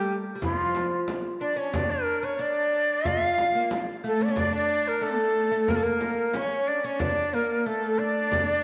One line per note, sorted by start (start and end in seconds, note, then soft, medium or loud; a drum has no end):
0.00 0.12 G3 medium
0.00 0.14 G3 medium
0.00 0.14 G4 medium
0.10 darbuka ka soft
0.35 0.42 G3 soft
0.41 1.03 F3 medium
0.41 1.04 F3 medium
0.41 0.54 E4 medium
0.41 frame drum medium
0.41 darbuka dum medium
0.54 1.04 F4 medium
0.75 darbuka tek medium
0.75 frame drum medium
0.92 darbuka ka soft
1.08 darbuka tek medium
1.08 frame drum medium
1.40 1.59 D4 medium
1.40 1.56 D4 medium
1.40 1.60 D5 medium
1.56 1.73 C#4 medium
1.56 1.75 C#4 medium
1.56 1.77 C#5 medium
1.73 2.22 D4 medium
1.73 2.38 D4 medium
1.73 1.92 D5 medium
1.73 frame drum loud
1.73 darbuka dum loud
1.91 2.26 A#4 medium
2.07 darbuka ka soft
2.23 2.39 C#4 medium
2.23 2.43 C#5 medium
2.23 darbuka ka soft
2.38 3.06 D4 medium
2.38 3.05 D4 medium
2.38 3.09 D5 medium
2.72 darbuka ka soft
3.04 3.70 F4 medium
3.04 3.56 F4 medium
3.04 3.72 F5 medium
3.04 frame drum medium
3.04 darbuka dum medium
3.38 darbuka tek medium
3.38 frame drum medium
3.55 3.70 A#3 medium
3.55 darbuka ka soft
3.71 darbuka tek medium
3.71 frame drum medium
4.04 4.30 A3 medium
4.04 4.21 A3 medium
4.04 4.24 A4 medium
4.20 4.27 C#4 medium
4.20 4.26 C#5 medium
4.20 4.32 D5 medium
4.28 4.36 C#4 medium
4.28 4.37 C#4 medium
4.28 4.41 C#5 medium
4.35 4.52 D4 medium
4.35 4.51 D4 medium
4.35 4.54 D5 loud
4.35 frame drum medium
4.35 darbuka dum loud
4.52 5.04 D4 medium
4.52 4.89 D5 medium
4.70 darbuka ka soft
4.86 5.05 A#4 medium
4.86 darbuka ka soft
5.01 5.50 A3 medium
5.01 5.69 A3 medium
5.01 5.71 A4 medium
5.35 darbuka ka soft
5.51 5.68 A3 medium
5.68 5.81 A#3 medium
5.68 5.77 A#4 medium
5.68 frame drum medium
5.68 darbuka dum loud
5.76 5.85 A4 medium
5.81 6.35 A#3 medium
5.81 6.36 A#3 medium
5.81 6.37 A#4 medium
6.01 darbuka tek medium
6.01 frame drum medium
6.18 darbuka ka soft
6.33 6.68 C#4 medium
6.33 6.83 C#4 medium
6.33 6.70 C#5 medium
6.33 darbuka tek medium
6.33 frame drum medium
6.67 6.82 D4 medium
6.67 6.86 D5 medium
6.83 7.01 C#4 medium
6.83 6.99 C#4 medium
6.83 7.02 C#5 medium
6.99 7.34 D4 medium
6.99 7.35 D5 medium
6.99 frame drum medium
6.99 darbuka dum medium
7.32 7.66 A#3 medium
7.32 7.63 A#3 medium
7.32 7.68 A#4 medium
7.32 darbuka ka soft
7.50 darbuka ka soft
7.65 7.99 A3 medium
7.65 8.00 A3 medium
7.65 8.00 A4 medium
7.83 darbuka ka soft
7.98 8.63 D4 medium
7.98 8.63 D5 medium
8.16 darbuka ka soft
8.32 frame drum medium
8.32 darbuka dum medium